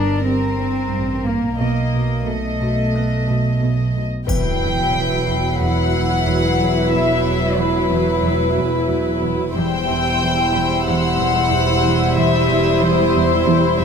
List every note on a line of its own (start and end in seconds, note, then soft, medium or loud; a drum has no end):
0.00 0.88 G1 soft
0.00 0.14 G2 soft
0.00 0.26 D4 soft
0.00 1.63 G4 soft
0.00 1.56 A#4 soft
0.00 1.63 G5 soft
0.26 0.46 G3 soft
0.26 1.24 C4 medium
0.60 0.80 G2 soft
0.92 1.59 A1 soft
0.92 1.13 G2 soft
1.26 1.47 G2 soft
1.26 1.58 A#3 soft
1.59 4.03 B1 soft
1.59 1.80 B2 soft
1.59 2.25 A#3 soft
1.59 2.25 D#5 soft
1.94 2.14 B2 soft
2.26 2.47 B2 soft
2.26 3.94 A3 soft
2.26 4.05 D#5 soft
2.61 2.81 B2 soft
2.95 3.15 B3 soft
2.95 6.85 F#6 soft
3.28 3.48 B2 soft
3.62 3.82 B2 soft
3.96 4.16 B2 soft
4.27 9.51 E1 soft
4.27 9.51 E2 soft
4.27 4.49 E2 soft
4.27 9.52 F#3 soft
4.27 9.52 E4 soft
4.27 8.17 B4 soft
4.27 9.52 B4 soft
4.27 5.57 G5 medium
4.27 9.18 B6 soft
4.27 8.53 C7 soft
4.27 impact soft
4.27 triangle soft
4.63 4.82 E2 soft
4.96 5.16 E3 soft
5.28 5.48 E2 soft
5.62 5.81 E2 soft
5.62 6.93 F#5 medium
5.94 6.14 E2 soft
6.27 6.47 E2 soft
6.60 6.79 E2 soft
6.93 7.13 E2 soft
6.93 7.57 E5 soft
7.26 7.45 E2 soft
7.59 7.78 E3 soft
7.59 9.24 B4 soft
7.92 8.11 E2 soft
8.24 8.44 E2 soft
8.57 8.77 E2 soft
8.90 9.09 E2 soft
9.23 9.43 E2 soft
9.55 13.85 E1 soft
9.55 9.75 E2 soft
9.55 13.85 E2 soft
9.55 13.85 G3 soft
9.55 13.85 E4 soft
9.55 13.85 C5 soft
9.55 10.82 G5 medium
9.55 13.85 C6 soft
9.55 12.22 E6 soft
9.88 10.08 E2 soft
10.22 10.41 E3 soft
10.53 10.74 E2 soft
10.53 13.85 B5 soft
10.87 11.06 E2 medium
10.87 12.17 F#5 medium
11.20 11.39 E2 soft
11.52 11.71 E2 soft
11.85 12.04 E2 soft
12.17 12.37 E2 soft
12.17 12.81 E5 medium
12.22 13.11 D#6 soft
12.51 12.70 E2 soft
12.83 13.02 E3 soft
12.83 13.80 C5 medium
13.15 13.34 E2 soft
13.47 13.66 E2 medium
13.79 13.85 E2 soft
13.79 13.85 E5 medium